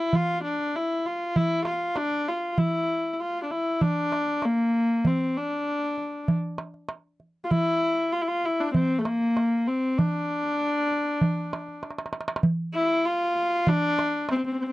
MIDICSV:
0, 0, Header, 1, 3, 480
1, 0, Start_track
1, 0, Tempo, 615385
1, 106, Time_signature, 4, 2, 24, 8
1, 11484, End_track
2, 0, Start_track
2, 0, Title_t, "Viola"
2, 0, Program_c, 0, 41
2, 0, Note_on_c, 0, 64, 86
2, 120, Note_on_c, 0, 65, 91
2, 131, Note_off_c, 0, 64, 0
2, 343, Note_off_c, 0, 65, 0
2, 347, Note_on_c, 0, 62, 84
2, 593, Note_on_c, 0, 64, 79
2, 604, Note_off_c, 0, 62, 0
2, 829, Note_on_c, 0, 65, 78
2, 840, Note_off_c, 0, 64, 0
2, 1064, Note_on_c, 0, 64, 95
2, 1076, Note_off_c, 0, 65, 0
2, 1292, Note_off_c, 0, 64, 0
2, 1297, Note_on_c, 0, 65, 80
2, 1534, Note_on_c, 0, 62, 93
2, 1545, Note_off_c, 0, 65, 0
2, 1780, Note_on_c, 0, 65, 77
2, 1792, Note_off_c, 0, 62, 0
2, 2013, Note_on_c, 0, 64, 86
2, 2025, Note_off_c, 0, 65, 0
2, 2442, Note_off_c, 0, 64, 0
2, 2442, Note_on_c, 0, 64, 49
2, 2496, Note_on_c, 0, 65, 75
2, 2507, Note_off_c, 0, 64, 0
2, 2673, Note_off_c, 0, 65, 0
2, 2678, Note_on_c, 0, 62, 53
2, 2738, Note_on_c, 0, 64, 75
2, 2750, Note_off_c, 0, 62, 0
2, 2978, Note_on_c, 0, 62, 88
2, 2990, Note_off_c, 0, 64, 0
2, 3470, Note_on_c, 0, 58, 88
2, 3481, Note_off_c, 0, 62, 0
2, 3954, Note_on_c, 0, 60, 75
2, 3966, Note_off_c, 0, 58, 0
2, 4190, Note_on_c, 0, 62, 82
2, 4202, Note_off_c, 0, 60, 0
2, 4908, Note_off_c, 0, 62, 0
2, 5807, Note_on_c, 0, 65, 64
2, 5857, Note_on_c, 0, 64, 97
2, 5869, Note_off_c, 0, 65, 0
2, 6339, Note_on_c, 0, 65, 87
2, 6351, Note_off_c, 0, 64, 0
2, 6410, Note_on_c, 0, 64, 68
2, 6422, Note_off_c, 0, 65, 0
2, 6455, Note_on_c, 0, 65, 88
2, 6467, Note_off_c, 0, 64, 0
2, 6593, Note_on_c, 0, 64, 84
2, 6605, Note_off_c, 0, 65, 0
2, 6711, Note_on_c, 0, 62, 90
2, 6723, Note_off_c, 0, 64, 0
2, 6820, Note_off_c, 0, 62, 0
2, 6825, Note_on_c, 0, 60, 95
2, 7009, Note_on_c, 0, 57, 69
2, 7021, Note_off_c, 0, 60, 0
2, 7073, Note_on_c, 0, 58, 87
2, 7085, Note_off_c, 0, 57, 0
2, 7547, Note_on_c, 0, 60, 79
2, 7558, Note_off_c, 0, 58, 0
2, 7785, Note_on_c, 0, 62, 88
2, 7796, Note_off_c, 0, 60, 0
2, 9226, Note_off_c, 0, 62, 0
2, 9942, Note_on_c, 0, 64, 95
2, 10182, Note_on_c, 0, 65, 91
2, 10194, Note_off_c, 0, 64, 0
2, 10675, Note_on_c, 0, 62, 106
2, 10687, Note_off_c, 0, 65, 0
2, 11150, Note_off_c, 0, 62, 0
2, 11163, Note_on_c, 0, 60, 93
2, 11206, Note_off_c, 0, 60, 0
2, 11211, Note_on_c, 0, 60, 62
2, 11262, Note_off_c, 0, 60, 0
2, 11278, Note_on_c, 0, 60, 72
2, 11326, Note_off_c, 0, 60, 0
2, 11337, Note_on_c, 0, 60, 62
2, 11381, Note_off_c, 0, 60, 0
2, 11386, Note_on_c, 0, 60, 70
2, 11438, Note_off_c, 0, 60, 0
2, 11448, Note_on_c, 0, 60, 60
2, 11484, Note_off_c, 0, 60, 0
2, 11484, End_track
3, 0, Start_track
3, 0, Title_t, "Darbuka"
3, 101, Note_on_c, 9, 64, 84
3, 179, Note_off_c, 9, 64, 0
3, 463, Note_on_c, 9, 62, 23
3, 541, Note_off_c, 9, 62, 0
3, 580, Note_on_c, 9, 62, 21
3, 658, Note_off_c, 9, 62, 0
3, 824, Note_on_c, 9, 62, 23
3, 902, Note_off_c, 9, 62, 0
3, 1061, Note_on_c, 9, 64, 78
3, 1139, Note_off_c, 9, 64, 0
3, 1288, Note_on_c, 9, 63, 59
3, 1366, Note_off_c, 9, 63, 0
3, 1527, Note_on_c, 9, 63, 62
3, 1605, Note_off_c, 9, 63, 0
3, 1649, Note_on_c, 9, 62, 24
3, 1727, Note_off_c, 9, 62, 0
3, 2011, Note_on_c, 9, 64, 78
3, 2089, Note_off_c, 9, 64, 0
3, 2733, Note_on_c, 9, 62, 24
3, 2811, Note_off_c, 9, 62, 0
3, 2975, Note_on_c, 9, 64, 80
3, 3053, Note_off_c, 9, 64, 0
3, 3216, Note_on_c, 9, 63, 58
3, 3294, Note_off_c, 9, 63, 0
3, 3334, Note_on_c, 9, 62, 22
3, 3412, Note_off_c, 9, 62, 0
3, 3449, Note_on_c, 9, 63, 61
3, 3527, Note_off_c, 9, 63, 0
3, 3694, Note_on_c, 9, 62, 21
3, 3772, Note_off_c, 9, 62, 0
3, 3937, Note_on_c, 9, 64, 86
3, 4015, Note_off_c, 9, 64, 0
3, 4661, Note_on_c, 9, 62, 25
3, 4739, Note_off_c, 9, 62, 0
3, 4900, Note_on_c, 9, 64, 84
3, 4978, Note_off_c, 9, 64, 0
3, 5134, Note_on_c, 9, 63, 66
3, 5212, Note_off_c, 9, 63, 0
3, 5257, Note_on_c, 9, 62, 20
3, 5335, Note_off_c, 9, 62, 0
3, 5371, Note_on_c, 9, 63, 69
3, 5449, Note_off_c, 9, 63, 0
3, 5615, Note_on_c, 9, 62, 23
3, 5693, Note_off_c, 9, 62, 0
3, 5859, Note_on_c, 9, 64, 77
3, 5937, Note_off_c, 9, 64, 0
3, 6584, Note_on_c, 9, 62, 25
3, 6662, Note_off_c, 9, 62, 0
3, 6821, Note_on_c, 9, 64, 84
3, 6899, Note_off_c, 9, 64, 0
3, 7061, Note_on_c, 9, 63, 65
3, 7139, Note_off_c, 9, 63, 0
3, 7189, Note_on_c, 9, 62, 22
3, 7267, Note_off_c, 9, 62, 0
3, 7306, Note_on_c, 9, 63, 58
3, 7384, Note_off_c, 9, 63, 0
3, 7552, Note_on_c, 9, 62, 23
3, 7630, Note_off_c, 9, 62, 0
3, 7791, Note_on_c, 9, 64, 83
3, 7869, Note_off_c, 9, 64, 0
3, 8154, Note_on_c, 9, 62, 24
3, 8232, Note_off_c, 9, 62, 0
3, 8273, Note_on_c, 9, 62, 23
3, 8351, Note_off_c, 9, 62, 0
3, 8509, Note_on_c, 9, 62, 22
3, 8587, Note_off_c, 9, 62, 0
3, 8747, Note_on_c, 9, 64, 83
3, 8825, Note_off_c, 9, 64, 0
3, 8865, Note_on_c, 9, 62, 21
3, 8943, Note_off_c, 9, 62, 0
3, 8994, Note_on_c, 9, 63, 69
3, 9072, Note_off_c, 9, 63, 0
3, 9112, Note_on_c, 9, 62, 24
3, 9190, Note_off_c, 9, 62, 0
3, 9226, Note_on_c, 9, 63, 54
3, 9286, Note_on_c, 9, 62, 55
3, 9304, Note_off_c, 9, 63, 0
3, 9348, Note_on_c, 9, 63, 65
3, 9364, Note_off_c, 9, 62, 0
3, 9405, Note_on_c, 9, 62, 64
3, 9426, Note_off_c, 9, 63, 0
3, 9459, Note_on_c, 9, 63, 73
3, 9483, Note_off_c, 9, 62, 0
3, 9521, Note_on_c, 9, 62, 70
3, 9537, Note_off_c, 9, 63, 0
3, 9578, Note_on_c, 9, 63, 89
3, 9599, Note_off_c, 9, 62, 0
3, 9642, Note_on_c, 9, 62, 95
3, 9656, Note_off_c, 9, 63, 0
3, 9697, Note_on_c, 9, 64, 86
3, 9720, Note_off_c, 9, 62, 0
3, 9775, Note_off_c, 9, 64, 0
3, 10060, Note_on_c, 9, 62, 25
3, 10138, Note_off_c, 9, 62, 0
3, 10418, Note_on_c, 9, 62, 28
3, 10496, Note_off_c, 9, 62, 0
3, 10662, Note_on_c, 9, 64, 89
3, 10740, Note_off_c, 9, 64, 0
3, 10910, Note_on_c, 9, 63, 66
3, 10988, Note_off_c, 9, 63, 0
3, 11144, Note_on_c, 9, 63, 72
3, 11222, Note_off_c, 9, 63, 0
3, 11261, Note_on_c, 9, 62, 29
3, 11339, Note_off_c, 9, 62, 0
3, 11484, End_track
0, 0, End_of_file